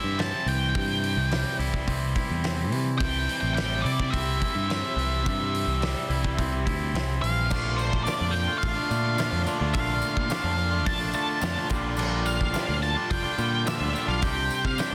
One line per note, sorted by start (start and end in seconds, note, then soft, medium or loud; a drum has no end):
0.00 0.74 C3 medium
0.00 2.99 E3 medium
0.00 1.31 G3 medium
0.00 3.00 G3 medium
0.00 0.18 C4 medium
0.00 3.00 C4 medium
0.00 1.59 E4 medium
0.00 3.01 E4 medium
0.00 0.20 E5 medium
0.04 0.31 G2 medium
0.18 1.87 C4 medium
0.18 0.48 A5 loud
0.18 snare loud
0.18 open hi-hat medium
0.46 0.73 C2 medium
0.46 2.71 E3 medium
0.46 1.56 G5 medium
0.46 open hi-hat medium
0.75 1.15 G2 medium
0.75 2.99 C3 medium
0.75 kick loud
0.75 open hi-hat medium
1.04 open hi-hat medium
1.17 1.43 C2 medium
1.31 3.55 G3 medium
1.31 snare loud
1.31 open hi-hat medium
1.59 1.86 C2 medium
1.59 2.15 E4 medium
1.59 open hi-hat medium
1.74 kick medium
1.87 2.14 C2 medium
1.87 2.43 C4 medium
1.87 kick loud
1.87 open hi-hat medium
2.15 3.84 E4 medium
2.15 kick medium
2.15 open hi-hat medium
2.30 2.72 E2 medium
2.44 4.12 C4 medium
2.44 snare loud
2.44 open hi-hat medium
2.72 2.99 C3 medium
2.72 4.95 E3 medium
2.72 open hi-hat medium
2.98 3.27 C2 medium
2.98 4.40 C3 medium
2.98 7.50 E3 medium
2.98 7.50 G3 medium
2.98 7.46 C4 medium
2.98 7.50 C4 medium
2.98 7.51 E4 medium
2.98 7.46 G4 medium
2.98 7.46 E5 medium
2.98 3.40 G5 loud
2.98 kick loud
2.98 open hi-hat medium
3.29 open hi-hat medium
3.41 3.82 A1 medium
3.41 3.53 G5 loud
3.55 4.96 G3 medium
3.55 3.85 G5 loud
3.55 snare loud
3.55 open hi-hat medium
3.82 4.11 C3 medium
3.82 4.38 E4 medium
3.82 4.12 D5 medium
3.82 open hi-hat soft
4.00 kick medium
4.10 4.40 C2 medium
4.10 4.67 C4 medium
4.10 6.89 E5 medium
4.10 kick loud
4.10 open hi-hat medium
4.39 5.81 E4 medium
4.39 kick medium
4.39 open hi-hat medium
4.55 4.81 G2 medium
4.68 6.09 C4 medium
4.68 snare loud
4.68 open hi-hat medium
4.96 5.23 C2 medium
4.96 6.37 E3 medium
4.96 open hi-hat medium
5.24 5.65 G2 medium
5.24 6.65 C3 medium
5.24 kick loud
5.24 open hi-hat medium
5.55 open hi-hat medium
5.67 5.94 C2 medium
5.81 7.21 G3 medium
5.81 snare loud
5.81 open hi-hat medium
6.10 6.36 C2 medium
6.10 6.64 E4 medium
6.10 open hi-hat medium
6.24 kick medium
6.37 6.65 C2 loud
6.37 6.94 C4 medium
6.37 kick loud
6.37 open hi-hat medium
6.65 6.92 D2 medium
6.65 7.50 E4 medium
6.65 kick medium
6.65 open hi-hat medium
6.93 7.19 C2 medium
6.93 7.50 C4 medium
6.93 snare loud
6.93 open hi-hat medium
7.22 7.47 A#1 medium
7.22 7.50 E3 medium
7.22 7.80 F5 loud
7.22 7.75 F6 medium
7.22 open hi-hat medium
7.50 7.90 A#1 medium
7.50 8.04 A#2 medium
7.50 8.04 D3 medium
7.50 8.06 A3 loud
7.50 11.67 D4 medium
7.50 8.06 D4 medium
7.50 8.07 F4 loud
7.50 14.19 A4 medium
7.50 9.72 A5 medium
7.50 kick loud
7.50 crash loud
7.50 tambourine medium
7.77 8.03 C5 medium
7.77 8.04 C6 medium
7.77 tambourine medium
7.93 8.06 A#1 medium
7.93 kick medium
8.04 8.52 A#2 medium
8.04 8.33 D3 medium
8.04 8.20 A3 loud
8.04 8.20 D4 medium
8.04 8.19 F4 loud
8.04 8.34 D5 medium
8.04 8.32 D6 medium
8.04 open hi-hat medium
8.04 tambourine medium
8.08 snare loud
8.19 8.47 F2 medium
8.19 8.33 A3 medium
8.19 8.34 D4 medium
8.19 8.35 F4 medium
8.31 8.58 G5 loud
8.31 8.60 G6 medium
8.31 muted clean electric guitar stroke soft
8.35 9.19 F4 medium
8.35 tambourine soft
8.48 8.76 A3 medium
8.48 8.76 D4 medium
8.48 8.75 F4 medium
8.58 9.40 F5 loud
8.58 9.42 F6 medium
8.63 8.76 A1 loud
8.63 9.47 D4 medium
8.63 kick loud
8.63 open hi-hat medium
8.63 tambourine soft
8.75 8.89 A3 medium
8.75 8.90 D4 medium
8.75 8.90 F4 medium
8.89 9.30 A#2 medium
8.89 9.16 D3 medium
8.89 9.17 A3 medium
8.89 9.18 D4 medium
8.89 9.18 F4 medium
8.89 tambourine medium
9.17 9.65 A#2 loud
9.17 9.44 D3 medium
9.17 9.32 A3 medium
9.17 9.32 D4 loud
9.17 9.31 F4 loud
9.17 snare loud
9.17 open hi-hat medium
9.17 tambourine medium
9.31 9.45 F2 medium
9.31 9.45 A3 medium
9.31 9.46 D4 medium
9.31 9.47 F4 medium
9.45 9.73 D3 medium
9.45 9.61 A3 medium
9.45 9.60 D4 medium
9.45 9.59 F4 medium
9.45 tambourine medium
9.60 9.74 D2 medium
9.60 9.74 A3 medium
9.60 9.75 D4 medium
9.60 9.76 F4 medium
9.73 10.01 A#1 medium
9.73 10.29 A#2 medium
9.73 10.29 D3 loud
9.73 10.29 A3 loud
9.73 10.31 D4 loud
9.73 10.31 F4 loud
9.73 10.86 F5 medium
9.73 14.95 G5 medium
9.73 10.82 F6 medium
9.73 kick loud
9.73 open hi-hat medium
9.73 tambourine medium
10.02 tambourine medium
10.17 10.30 A#2 medium
10.17 kick medium
10.30 10.76 A#2 medium
10.30 10.56 D3 medium
10.30 10.44 A3 medium
10.30 10.45 D4 loud
10.30 10.43 F4 loud
10.30 snare loud
10.30 open hi-hat medium
10.30 tambourine medium
10.43 10.87 F2 medium
10.43 10.56 A3 medium
10.43 10.58 D4 medium
10.43 10.58 F4 medium
10.57 11.40 F4 medium
10.57 muted clean electric guitar stroke medium
10.57 tambourine soft
10.71 11.00 A3 medium
10.71 11.00 D4 medium
10.71 10.98 F4 medium
10.86 11.13 A#1 medium
10.86 12.54 D4 medium
10.86 11.14 A5 loud
10.86 11.13 A6 medium
10.86 kick loud
10.86 open hi-hat medium
10.86 tambourine soft
10.99 11.12 A3 medium
10.99 11.14 D4 medium
10.99 11.14 F4 medium
11.13 11.40 D3 medium
11.13 11.40 A3 medium
11.13 11.41 D4 medium
11.13 11.41 F4 medium
11.13 11.67 A5 loud
11.13 11.67 A6 medium
11.13 tambourine medium
11.41 11.56 F2 medium
11.41 11.67 A#2 medium
11.41 11.68 D3 loud
11.41 11.56 A3 loud
11.41 11.55 D4 loud
11.41 11.54 F4 loud
11.41 snare loud
11.41 open hi-hat medium
11.41 tambourine loud
11.55 11.69 A3 medium
11.55 11.70 D4 medium
11.55 11.68 F4 medium
11.69 11.97 A#1 medium
11.69 11.95 A#2 medium
11.69 11.96 D3 loud
11.69 11.84 G3 loud
11.69 11.83 D4 loud
11.69 11.81 F4 loud
11.69 14.21 F4 medium
11.69 kick loud
11.69 tambourine medium
11.83 11.97 G3 medium
11.83 11.97 D4 medium
11.83 11.98 F4 medium
11.96 12.38 A#1 loud
11.96 12.51 A#2 medium
11.96 12.52 D3 medium
11.96 12.53 G3 medium
11.96 12.54 D4 loud
11.96 12.53 F4 loud
11.96 tambourine medium
11.96 crash loud
12.26 12.78 F5 loud
12.26 12.79 F6 medium
12.26 tambourine medium
12.41 12.54 A#1 medium
12.41 kick medium
12.52 12.95 A#2 medium
12.52 12.79 D3 medium
12.52 12.67 G3 loud
12.52 12.66 D4 loud
12.52 12.64 F4 loud
12.52 snare loud
12.52 open hi-hat medium
12.52 tambourine loud
12.66 12.95 D2 medium
12.66 12.80 G3 medium
12.66 12.80 D4 medium
12.66 12.80 F4 medium
12.80 13.65 F4 medium
12.80 13.11 A5 loud
12.80 13.09 A6 medium
12.80 muted clean electric guitar stroke soft
12.80 tambourine soft
12.95 13.23 G3 medium
12.95 13.23 D4 medium
12.95 13.21 F4 medium
13.11 13.24 F1 loud
13.11 13.94 D4 medium
13.11 13.68 G5 loud
13.11 13.63 G6 medium
13.11 kick loud
13.11 open hi-hat medium
13.11 tambourine soft
13.22 13.36 G3 medium
13.22 13.37 D4 medium
13.22 13.37 F4 medium
13.37 13.78 A#2 medium
13.37 13.65 D3 medium
13.37 13.65 G3 medium
13.37 13.66 D4 medium
13.37 13.66 F4 medium
13.37 tambourine medium
13.65 14.08 A#2 medium
13.65 13.91 D3 loud
13.65 13.80 G3 loud
13.65 13.80 D4 medium
13.65 13.78 F4 loud
13.65 14.06 E5 loud
13.65 14.06 E6 medium
13.65 snare loud
13.65 open hi-hat medium
13.65 tambourine loud
13.79 13.93 D2 medium
13.79 13.92 G3 medium
13.79 13.94 D4 medium
13.79 13.93 F4 medium
13.93 14.20 D3 medium
13.93 14.07 G3 medium
13.93 14.07 D4 medium
13.93 14.06 F4 medium
13.93 tambourine medium
14.07 14.21 B1 medium
14.07 14.20 G3 medium
14.07 14.22 D4 medium
14.07 14.20 F4 medium
14.07 14.23 F5 medium
14.07 14.22 F6 medium
14.21 14.77 C3 medium
14.21 14.78 G3 medium
14.21 14.78 C4 loud
14.21 14.79 D4 medium
14.21 14.95 D4 medium
14.21 14.79 G4 loud
14.21 14.95 C5 medium
14.21 14.66 G5 loud
14.21 14.63 G6 medium
14.21 kick loud
14.21 open hi-hat medium
14.21 tambourine medium
14.50 tambourine medium
14.65 14.78 C3 medium
14.65 14.79 F5 medium
14.65 14.79 F6 medium
14.65 kick medium
14.78 14.95 C3 medium
14.78 14.95 G3 loud
14.78 14.92 C4 medium
14.78 14.92 D4 medium
14.78 14.91 G4 loud
14.78 14.95 G5 loud
14.78 14.95 G6 medium
14.78 snare loud
14.78 open hi-hat medium
14.78 tambourine medium